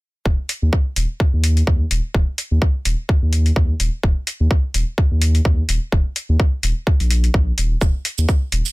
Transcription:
0.26 sub bass D#1, kick
0.49 open hi-hat
0.62 sub bass D#2
0.73 kick
0.96 sub bass D#1, open hi-hat
1.20 kick
1.33 sub bass D#2
1.44 open hi-hat
1.57 open hi-hat
1.67 sub bass D#2, kick
1.91 sub bass D#1, open hi-hat
2.14 sub bass D#1, kick
2.38 open hi-hat
2.51 sub bass D#2
2.62 kick
2.85 sub bass D#1, open hi-hat
3.09 kick
3.22 sub bass D#2
3.33 open hi-hat
3.46 open hi-hat
3.56 sub bass D#2, kick
3.80 sub bass D#1, open hi-hat
4.03 sub bass D#1, kick
4.27 open hi-hat
4.40 sub bass D#2
4.51 kick
4.74 sub bass D#1, open hi-hat
4.98 kick
5.11 sub bass D#2
5.22 open hi-hat
5.35 open hi-hat
5.45 sub bass D#2, kick
5.69 sub bass D#1, open hi-hat
5.92 sub bass D#1, kick
6.16 open hi-hat
6.29 sub bass D#2
6.40 kick
6.63 sub bass D#1, open hi-hat
6.87 kick
7.00 sub bass A#1, open hi-hat
7.11 open hi-hat
7.24 open hi-hat
7.34 sub bass A#1, kick
7.58 sub bass D#1, open hi-hat
7.81 sub bass D#1, kick, shaker
8.05 open hi-hat
8.18 sub bass D#2, shaker
8.29 kick, shaker
8.52 sub bass D#1, open hi-hat
8.66 shaker

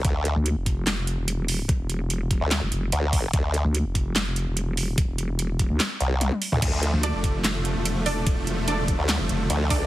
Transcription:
0.05 wobble bass D2, kick, closed hi-hat
0.25 closed hi-hat
0.36 wobble bass D2
0.46 closed hi-hat
0.56 wobble bass F1
0.66 kick, closed hi-hat
0.87 snare, clap, closed hi-hat
1.07 closed hi-hat
1.18 wobble bass E1
1.28 closed hi-hat
1.48 open hi-hat
1.69 kick, closed hi-hat
1.80 wobble bass E1
1.90 closed hi-hat
2.10 closed hi-hat
2.31 kick, closed hi-hat
2.41 wobble bass D2
2.51 snare, clap, closed hi-hat
2.62 wobble bass F1
2.72 wobble bass F1, closed hi-hat
2.92 wobble bass D2, closed hi-hat
3.13 kick, open hi-hat
3.33 wobble bass D2, kick, closed hi-hat
3.54 closed hi-hat
3.65 wobble bass D2
3.75 closed hi-hat
3.85 wobble bass F1
3.95 kick, closed hi-hat
4.16 snare, clap, closed hi-hat
4.36 closed hi-hat
4.47 wobble bass E1
4.57 closed hi-hat
4.77 open hi-hat
4.98 kick, closed hi-hat
5.08 wobble bass E1
5.18 closed hi-hat
5.39 closed hi-hat
5.59 kick, closed hi-hat
5.70 wobble bass D2
5.80 snare, clap, closed hi-hat
6.00 wobble bass C2, closed hi-hat
6.21 closed hi-hat, high tom
6.32 high tom
6.42 open hi-hat
6.52 wobble bass D2, mid tom
6.62 wobble bass D2, supersaw synth D3 F3 A3, kick, closed hi-hat, crash, ride
6.83 closed hi-hat
6.93 wobble bass D2
7.03 synth stab D4 A4 D5, closed hi-hat, ride
7.14 wobble bass F1
7.24 kick, closed hi-hat
7.44 snare, clap, closed hi-hat, ride
7.65 closed hi-hat
7.75 wobble bass E1
7.85 closed hi-hat, ride
8.06 synth stab D4 A4 D5, open hi-hat
8.18 wobble bass D#1
8.27 kick, closed hi-hat, ride
8.37 wobble bass E1
8.47 closed hi-hat
8.68 synth stab D4 A4 D5, closed hi-hat, ride
8.88 kick, closed hi-hat
8.99 wobble bass D2
9.09 snare, clap, closed hi-hat, ride
9.19 wobble bass F1
9.29 wobble bass F1, closed hi-hat
9.50 wobble bass D2, closed hi-hat, ride
9.70 synth stab D4 A4 D5, kick, open hi-hat

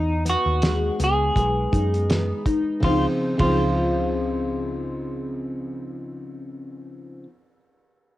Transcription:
Already playing: picked electric bass E2, clean electric guitar D#4, steel-string acoustic guitar D#4
0.25 steel-string acoustic guitar B3, closed hi-hat
0.30 clean electric guitar F#4
0.46 picked electric bass D#2
0.62 steel-string acoustic guitar G#3, snare, closed hi-hat
0.99 picked electric bass C#2, steel-string acoustic guitar B3, closed hi-hat
1.04 clean electric guitar G#4
1.36 picked electric bass B1, steel-string acoustic guitar G#3, kick, closed hi-hat
1.72 picked electric bass F#2, steel-string acoustic guitar D#4, kick, closed hi-hat
1.94 closed hi-hat
2.10 steel-string acoustic guitar B3, snare, closed hi-hat
2.46 steel-string acoustic guitar D#4, kick, closed hi-hat
2.80 picked electric bass C#2, steel-string acoustic guitar C#3 F3, kick, ride
2.84 steel-string acoustic guitar C4 D#4, clean electric guitar F4
3.37 picked electric bass C#2, steel-string acoustic guitar C#3 F3, clean electric guitar F4, kick, ride
3.43 steel-string acoustic guitar C4 D#4

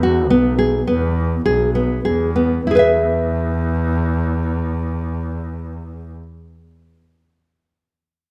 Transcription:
Already playing: double bass E2
0.03 nylon-string guitar F#4
0.30 double bass B1, nylon-string guitar B3
0.59 nylon-string guitar G#4
0.87 double bass E2, nylon-string guitar B3
1.46 double bass B1, nylon-string guitar G#4
1.75 nylon-string guitar B3
2.05 double bass E2, nylon-string guitar G#4
2.36 nylon-string guitar B3
2.67 double bass E2, nylon-string guitar E4 G#4
2.75 nylon-string guitar B4 E5

